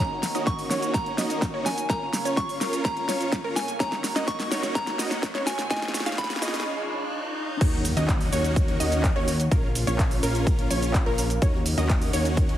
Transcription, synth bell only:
0.00 A#5
0.47 C#6
0.94 A#5
1.66 G#5
1.90 A#5
2.37 C#6
2.85 A#5
3.56 G#5
3.80 A#5
4.28 C#6
4.75 A#5
5.47 G#5
5.70 G#5
6.18 B5

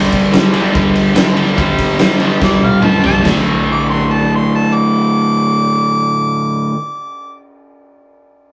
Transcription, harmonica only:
2.44 D5
2.64 F5
2.85 A5
3.06 A5
3.72 D6
3.90 C6
4.13 A5
4.35 C6
4.56 A5
4.74 D6

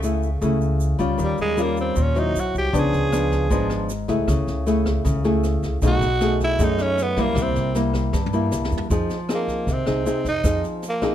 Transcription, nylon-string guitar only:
Already playing: C#3
0.03 A3 E4 G#4
0.42 C#3 A3 E4 G#4
0.99 G3 C#4 F4
1.18 D#3
1.57 G3 C#4 F4
1.96 A#2
2.15 F#3 C4 E4
2.73 C#3 F3 B3 D4
3.12 F3 B3 D4
3.50 G#2 F3 B3 D4
4.08 A3 E4 G#4
4.28 C#3
4.66 A3 E4 G#4
5.05 C#3
5.24 A3 E4 G#4
5.82 B2 A3 D#4 G#4
6.21 A3 D#4 G#4
6.59 F#2 A3 D#4 G#4
7.17 G3 A#3 E4
7.36 C3
7.75 G3 A#3 E4
8.13 G2
8.33 G3 A#3 E4
8.90 F3 C4 D#4 G#4
9.29 C4 D#4 G#4
9.68 C3
9.87 C4 D#4 G#4
10.06 C4 D#4 G#4
10.45 F3 C4 D#4 G#4
11.02 C4 D#4 G#4

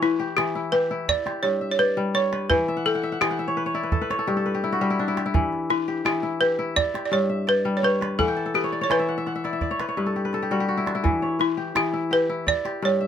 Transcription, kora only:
Already playing: E3 A3 E4 F#4 G4 A4 C#5
0.02 B4
0.20 G4
0.38 E3
0.55 E4
0.73 G4
0.91 E4
1.08 D5
1.26 G4
1.43 G2
1.61 E5
1.79 D5
1.97 G3
2.14 C#5
2.32 B4
2.50 E3
2.68 E5
2.77 F#5
2.86 G5
2.95 F#5
3.03 E5
3.12 F#5
3.21 E3 G5
3.31 F#5
3.39 E5
3.48 C#5
3.57 B4
3.66 C#5
3.75 E4 D5
3.83 B4
3.92 A4
4.01 B4
4.10 C#5
4.19 A4
4.27 G2 G4
4.37 A4
4.46 B4
4.54 G4
4.64 E4
4.72 F#4
4.81 G3 G4
4.90 E4
4.99 D4
5.08 E4
5.17 G4
5.26 E4
5.34 E3
5.70 B4
5.88 G4
6.05 E3
6.23 E4
6.41 G4
6.59 E4
6.76 D5
6.94 G4
7.12 G2
7.29 E5
7.47 D5
7.65 G3
7.83 C#5
8.01 B4
8.19 E3 F#5
8.28 G5
8.36 A5
8.46 A4
8.54 B4
8.64 C#5
8.72 D5
8.81 C#5
8.90 E3 D5
8.99 E5
9.09 F#5
9.18 E5
9.27 F#5
9.36 E5
9.45 E4 D5
9.53 E5
9.62 D5
9.71 C#5
9.80 B4
9.89 C#5
9.97 G2 B4
10.06 A4
10.16 G4
10.25 B4
10.34 A4
10.43 G4
10.51 G3 F#4
10.60 G4
10.68 F#4
10.77 E4
10.86 D4
10.95 E4
11.04 E3
11.22 C#5
11.39 B4
11.57 G4
11.75 E3
11.93 E4
12.11 G4
12.29 E4
12.47 D5
12.65 G4
12.82 G2
13.01 E5

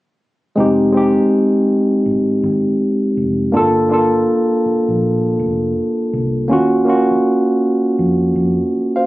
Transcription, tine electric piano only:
0.56 G#3 C4 D#4
0.60 G4
0.92 G#3 C4 D#4
0.97 G4
3.52 A#3 D4 F4
3.57 A4
3.89 A#3 D4 F4
3.94 A4
6.48 A#3 C#4 F4
6.53 F#4
6.85 A#3 C#4 F4
6.89 F#4
8.96 C5 F5

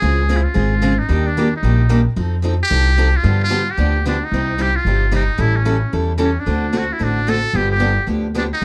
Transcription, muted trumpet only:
Already playing: G#4
0.37 E4
0.44 F4
0.99 D#4
1.27 D4
1.56 D#4
2.63 G4
3.17 F4
3.44 F4
3.71 G4
4.08 D4
4.25 D#4
4.62 G4
4.76 F4
5.15 D#4
5.41 E4
5.56 C#4
6.25 C#4
6.40 D4
6.78 F#4
6.93 E4
7.03 D4
7.29 A4
7.56 G4
7.72 G4
8.38 D4
8.53 D#4

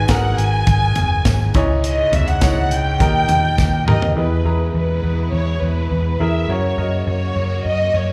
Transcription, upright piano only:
Already playing: G#2 D#3 F#4 G#4 B4
0.09 F#4 G#4 A#4
1.55 G#2 D#4 E4 C#5
2.41 D#4 E4 C#5
3.00 A#2 D#4 G4 A#4
3.88 D#4 G4 A#4
4.16 B2 E4 G#4 B4
4.45 E4 G#4 A#5
6.20 E4 G#4 A#4
6.49 C#3 F#4 A#4 C#5
6.78 F#4 A#4 D#5

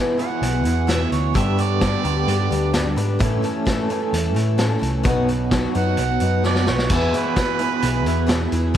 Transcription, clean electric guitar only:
Already playing: E2 B2 E3 B3 E4 G#4
0.18 E2 B2 E3 B3 E4 G#4
1.34 G2 D3 G3 B3 D4 G4
2.03 G2 D3 G3 B3 D4 G4
3.19 A2 E3 A3 C#4 A4
3.89 A2 E3 A3 C#4 A4
5.04 B2 F#3 B3 D#4 F#4
5.74 B2 F#3 B3 D#4 F#4
6.90 E2 B2 E3 B3 E4 G#4
7.59 E2 B2 E3 B3 E4 G#4
8.74 G2

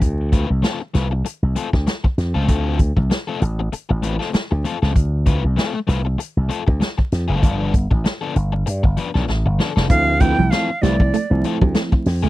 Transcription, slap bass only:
0.02 D2
0.50 C2
0.95 C2
1.43 C2
1.73 D2
2.18 F2
2.35 C#2
2.48 D2
2.97 C2
3.42 A1
3.90 A1
4.34 muted slap bass stroke
4.51 D2
4.82 C#2
4.96 D2
5.44 C2
5.88 C2
6.37 C2
6.68 D2
7.12 F2
7.29 F#1
7.43 G1
7.91 A1
8.36 G1
8.67 G2
8.84 G1
9.15 B1
9.28 A1
9.45 G1
9.76 F1
9.90 D2
10.38 C2
10.83 C2
11.31 C2
11.62 D2
12.06 F2
12.23 C#2

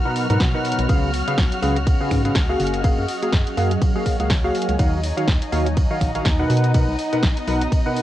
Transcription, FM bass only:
0.30 G#2
0.40 B2
0.79 B1
0.89 C#2
1.38 C#2
1.62 C#2
2.11 G#2
2.35 C#2
2.60 F#1
2.98 F#2
3.33 F#2
3.58 F#2
4.20 C#2
4.69 C#2
4.79 D#2
5.28 D#2
5.53 D#2
6.01 A#1
6.26 D#2
6.50 B2
6.88 B1
7.23 B1
7.48 B1

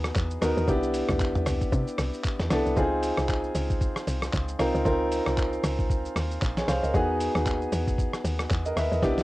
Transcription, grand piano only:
Already playing: B3 D#4 F#4 G#4
0.41 B3 D#4 F#4 A#4
0.68 B3 D4 E4 G4
2.50 B3 D4 E4 A4
2.77 C4 D#4 F4 G#4
4.59 C4 D#4 F4 A#4
4.85 C4 D#4 F4 A#4
6.57 G#4 C#5
6.68 C5 F5
6.83 A#4 D#5
6.94 B3 D#4 F#4 G#4
8.66 A#4 D#5
8.77 B4 E5
8.92 A#4 D#5
9.02 B3 D4 E4 G4

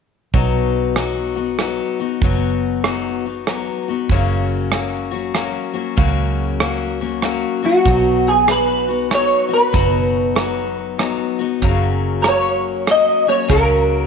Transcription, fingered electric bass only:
0.34 B1
2.22 F#1
4.10 F#1
5.98 C#2
7.86 B1
9.74 F#1
11.62 F#1
13.50 C#2

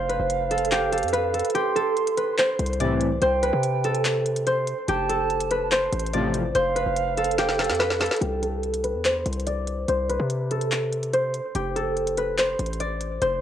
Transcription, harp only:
Already playing: G4 A4 C5 D5
0.09 B4
0.51 A4
0.72 G4
0.92 A4
1.13 B4
1.34 A4
1.55 G4
1.76 A4
2.17 B4
2.38 C5
2.80 D5
3.22 C5
3.43 B4
3.85 A4
4.47 C5
4.89 G4
5.09 A4
5.51 B4
5.72 C5
6.13 D5
6.55 C5
6.76 B4
7.18 A4
7.39 G4
7.59 A4
7.80 B4
8.00 A4
8.21 G4
8.42 A4
8.84 B4
9.05 C5
9.47 D5
9.89 C5
10.09 B4
10.51 A4
11.13 C5
11.55 G4
11.76 A4
12.18 B4
12.38 C5
12.80 D5
13.22 C5

